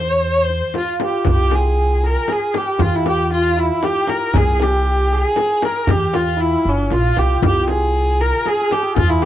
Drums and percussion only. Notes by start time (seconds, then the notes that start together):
0.50 tombak ka
0.74 tombak tek, frame drum
1.00 tombak tek, frame drum
1.25 frame drum, tombak dum
1.51 frame drum
2.03 tombak ka
2.28 tombak tek, frame drum
2.54 tombak tek, frame drum
2.79 frame drum, tombak dum
3.06 tombak tek, frame drum
3.58 tombak ka
3.83 tombak tek, frame drum
4.07 tombak tek, frame drum
4.34 tombak dum, frame drum
4.60 tombak tek, frame drum
5.11 tombak ka
5.36 tombak tek, frame drum
5.62 tombak tek, frame drum
5.87 tombak dum, frame drum
6.14 tombak tek, frame drum
6.90 tombak tek, frame drum
7.16 tombak tek, frame drum
7.42 frame drum, tombak dum
7.68 tombak tek, frame drum
8.21 tombak ka
8.46 tombak tek, frame drum
8.71 tombak tek, frame drum
8.96 frame drum, tombak dum